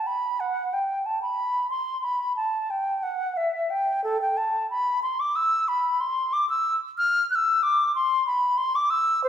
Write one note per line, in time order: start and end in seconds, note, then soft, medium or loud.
0.07 0.41 B5 medium
0.40 0.75 F#5 medium
0.73 1.07 G5 medium
1.06 1.21 A5 medium
1.22 1.70 B5 medium
1.70 2.05 C6 medium
2.04 2.36 B5 medium
2.36 2.72 A5 medium
2.70 3.04 G5 medium
3.03 3.38 F#5 medium
3.37 3.72 E5 medium
3.70 4.03 G5 medium
4.04 4.20 A4 medium
4.21 4.39 G5 medium
4.37 4.70 A5 medium
4.70 5.02 B5 medium
5.03 5.21 C6 medium
5.20 5.37 D6 medium
5.36 5.70 E6 medium
5.68 6.02 B5 medium
6.00 6.35 C6 medium
6.33 6.49 D6 medium
6.49 6.76 E6 medium
6.98 7.30 F6 loud
7.30 7.36 F#6 medium
7.35 7.64 E6 medium
7.63 7.95 D6 medium
7.95 8.26 C6 medium
8.27 8.59 B5 medium
8.58 8.77 C6 loud
8.75 8.92 D6 medium
8.90 9.23 E6 medium
9.24 9.29 C5 loud